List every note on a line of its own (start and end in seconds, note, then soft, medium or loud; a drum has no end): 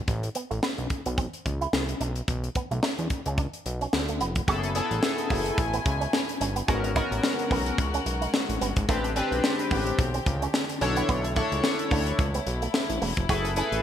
0.08 0.29 A1 loud
0.08 kick loud
0.08 closed hi-hat medium
0.23 muted clean electric guitar stroke soft
0.23 closed hi-hat medium
0.35 0.44 B3 medium
0.35 closed hi-hat medium
0.51 0.60 A1 medium
0.51 0.58 A3 medium
0.51 closed hi-hat soft
0.63 0.72 B3 medium
0.63 snare loud
0.78 0.88 B1 medium
0.78 muted clean electric guitar stroke soft
0.78 closed hi-hat soft
0.90 kick medium
0.90 closed hi-hat medium
1.06 1.27 B1 medium
1.06 1.13 B3 medium
1.06 closed hi-hat medium
1.18 1.27 C4 medium
1.18 kick loud
1.18 closed hi-hat medium
1.33 closed hi-hat medium
1.45 1.67 C#2 medium
1.45 muted clean electric guitar stroke soft
1.45 kick medium
1.45 closed hi-hat medium
1.61 1.68 E4 medium
1.61 closed hi-hat soft
1.73 1.94 C2 medium
1.73 snare loud
1.89 closed hi-hat medium
2.00 2.22 B1 loud
2.00 2.09 D4 medium
2.00 closed hi-hat medium
2.16 closed hi-hat medium
2.28 2.49 B1 loud
2.28 kick loud
2.28 closed hi-hat medium
2.43 muted clean electric guitar stroke soft
2.43 closed hi-hat soft
2.55 2.64 B3 medium
2.55 kick medium
2.55 closed hi-hat medium
2.71 2.80 B1 medium
2.71 2.78 A3 medium
2.71 closed hi-hat soft
2.83 2.92 A3 medium
2.83 snare loud
2.98 3.08 E2 medium
2.98 muted clean electric guitar stroke soft
2.98 closed hi-hat soft
3.10 kick medium
3.10 closed hi-hat medium
3.26 3.47 C#2 medium
3.26 3.33 C#4 medium
3.26 closed hi-hat medium
3.38 3.47 D4 medium
3.38 kick loud
3.38 closed hi-hat medium
3.53 closed hi-hat medium
3.66 3.87 B1 medium
3.66 muted clean electric guitar stroke soft
3.66 closed hi-hat medium
3.81 3.88 C#4 medium
3.81 closed hi-hat soft
3.93 4.22 D2 medium
3.93 muted clean electric guitar stroke soft
3.93 snare loud
4.08 4.16 A3 medium
4.08 closed hi-hat medium
4.21 4.42 F1 medium
4.21 4.29 B3 medium
4.21 closed hi-hat medium
4.35 kick medium
4.35 closed hi-hat medium
4.48 4.81 F#1 loud
4.48 6.66 B2 medium
4.48 6.66 A3 medium
4.48 4.70 B3 medium
4.48 4.70 E4 medium
4.48 6.66 E4 medium
4.48 4.57 F#4 medium
4.48 4.70 G#4 medium
4.48 4.70 A4 loud
4.48 6.66 G#5 medium
4.48 kick loud
4.48 closed hi-hat medium
4.63 muted clean electric guitar stroke soft
4.63 closed hi-hat medium
4.75 5.59 B3 medium
4.75 4.84 C#4 medium
4.75 5.59 E4 medium
4.75 5.59 G#4 medium
4.75 5.59 A4 loud
4.75 closed hi-hat medium
4.91 5.00 A1 medium
4.91 closed hi-hat soft
5.03 snare loud
5.18 closed hi-hat medium
5.30 5.52 F#1 loud
5.30 5.39 A3 medium
5.30 kick medium
5.30 open hi-hat medium
5.46 closed hi-hat medium
5.58 5.79 A1 loud
5.58 kick loud
5.58 closed hi-hat medium
5.73 5.80 B3 medium
5.73 closed hi-hat medium
5.86 6.07 C#2 loud
5.86 muted clean electric guitar stroke soft
5.86 kick loud
5.86 closed hi-hat medium
6.01 6.08 C#4 medium
6.01 closed hi-hat medium
6.13 muted clean electric guitar stroke soft
6.13 snare loud
6.29 closed hi-hat medium
6.41 6.62 G1 medium
6.41 6.50 C#4 medium
6.41 closed hi-hat medium
6.56 6.63 B3 medium
6.56 closed hi-hat medium
6.68 7.02 G#1 loud
6.68 8.86 C#3 medium
6.68 10.77 G#3 medium
6.68 6.77 G#3 medium
6.68 6.90 B3 medium
6.68 6.90 C#4 medium
6.68 8.86 F#4 medium
6.68 6.90 F#4 medium
6.68 8.86 A#4 medium
6.68 6.90 A#4 medium
6.68 kick loud
6.68 closed hi-hat medium
6.84 muted clean electric guitar stroke medium
6.84 closed hi-hat medium
6.96 7.79 B3 medium
6.96 7.80 C#4 medium
6.96 7.05 D#4 medium
6.96 7.80 F#4 medium
6.96 7.80 A#4 medium
6.96 kick medium
6.96 closed hi-hat medium
7.11 7.21 A1 medium
7.11 closed hi-hat medium
7.24 snare loud
7.39 closed hi-hat soft
7.51 7.72 B1 loud
7.51 7.60 B3 medium
7.51 kick medium
7.51 open hi-hat medium
7.66 closed hi-hat medium
7.78 8.00 C#2 loud
7.78 kick loud
7.78 closed hi-hat medium
7.94 8.01 C#4 medium
7.94 closed hi-hat medium
8.06 8.27 B1 medium
8.06 muted clean electric guitar stroke soft
8.06 closed hi-hat medium
8.21 8.28 D#4 medium
8.21 closed hi-hat medium
8.34 snare loud
8.49 8.58 A1 medium
8.49 closed hi-hat medium
8.61 8.73 G1 medium
8.61 8.70 B3 medium
8.61 closed hi-hat medium
8.76 8.86 G#1 loud
8.76 kick medium
8.76 closed hi-hat medium
8.88 9.22 A1 loud
8.88 13.25 D3 medium
8.88 8.97 A3 medium
8.88 9.10 C4 medium
8.88 10.79 C4 medium
8.88 9.10 D4 medium
8.88 10.79 G4 medium
8.88 9.10 G4 medium
8.88 9.11 B4 medium
8.88 kick loud
8.88 closed hi-hat medium
9.04 muted clean electric guitar stroke soft
9.04 closed hi-hat medium
9.16 10.00 C4 loud
9.16 9.25 C#4 medium
9.16 10.00 D4 medium
9.16 10.00 G4 medium
9.16 10.00 B4 loud
9.16 closed hi-hat medium
9.32 9.41 B1 medium
9.32 closed hi-hat soft
9.44 snare loud
9.59 closed hi-hat medium
9.71 9.92 A1 loud
9.71 9.80 B3 medium
9.71 kick medium
9.71 open hi-hat medium
9.87 closed hi-hat medium
9.99 10.20 B1 loud
9.99 kick loud
9.99 closed hi-hat medium
10.14 10.21 C4 medium
10.14 closed hi-hat medium
10.26 10.48 C#2 loud
10.26 muted clean electric guitar stroke soft
10.26 kick medium
10.26 closed hi-hat medium
10.42 10.49 C#4 medium
10.42 closed hi-hat medium
10.54 muted clean electric guitar stroke soft
10.54 snare loud
10.69 closed hi-hat medium
10.81 11.03 B1 loud
10.81 13.26 A3 medium
10.81 10.90 C#4 medium
10.81 11.27 D4 medium
10.81 13.82 E4 medium
10.81 11.27 E4 medium
10.81 11.27 A4 medium
10.81 13.26 C#5 medium
10.81 11.27 C#5 loud
10.81 closed hi-hat medium
10.96 11.04 B3 medium
10.96 closed hi-hat medium
11.09 11.42 B1 loud
11.09 11.18 B3 medium
11.09 kick loud
11.09 closed hi-hat medium
11.24 muted clean electric guitar stroke soft
11.24 closed hi-hat medium
11.36 11.45 A3 medium
11.36 12.20 D4 medium
11.36 12.20 E4 medium
11.36 12.20 A4 medium
11.36 12.20 C#5 loud
11.36 kick medium
11.36 closed hi-hat medium
11.52 11.61 C#2 medium
11.52 closed hi-hat soft
11.64 snare loud
11.79 closed hi-hat medium
11.91 12.13 D2 loud
11.91 12.00 A3 medium
11.91 kick medium
11.91 open hi-hat medium
12.06 closed hi-hat medium
12.19 12.40 C#2 loud
12.19 kick loud
12.19 closed hi-hat medium
12.34 12.41 B3 medium
12.34 closed hi-hat medium
12.47 12.68 B1 medium
12.47 muted clean electric guitar stroke soft
12.47 closed hi-hat medium
12.62 12.69 A3 medium
12.62 closed hi-hat medium
12.74 snare loud
12.90 12.99 A1 medium
12.90 closed hi-hat medium
13.01 13.13 E1 loud
13.01 13.10 A3 medium
13.01 open hi-hat medium
13.17 13.26 F1 medium
13.17 kick medium
13.17 closed hi-hat medium
13.29 13.62 F#1 loud
13.29 13.82 A2 medium
13.29 13.82 A3 medium
13.29 13.82 B3 medium
13.29 13.51 E4 medium
13.29 13.38 F#4 medium
13.29 13.51 G#4 medium
13.29 13.51 A4 medium
13.29 13.51 B4 medium
13.29 kick loud
13.29 closed hi-hat medium
13.45 muted clean electric guitar stroke soft
13.45 closed hi-hat medium
13.56 13.66 C#4 medium
13.56 13.82 E4 medium
13.56 13.82 G#4 medium
13.56 13.82 A4 medium
13.56 13.82 B4 loud
13.56 closed hi-hat medium
13.72 13.81 A1 medium
13.72 closed hi-hat soft